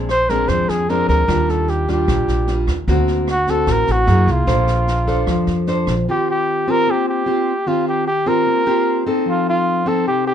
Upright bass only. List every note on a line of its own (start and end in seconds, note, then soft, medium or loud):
0.00 0.45 A#1 loud
0.49 0.67 F2 medium
0.69 1.06 F2 medium
1.09 1.27 D2 medium
1.28 2.04 D#2 loud
2.08 2.27 A#1 medium
2.28 2.65 A#1 medium
2.67 2.86 D#2 medium
2.88 3.64 D2 loud
3.67 3.86 A1 medium
3.88 4.07 A1 medium
4.07 4.26 F#2 loud
4.27 4.46 C2 medium
4.47 5.23 A#1 loud
5.27 5.46 F2 medium
5.47 5.84 F2 medium
5.87 6.06 A#1 medium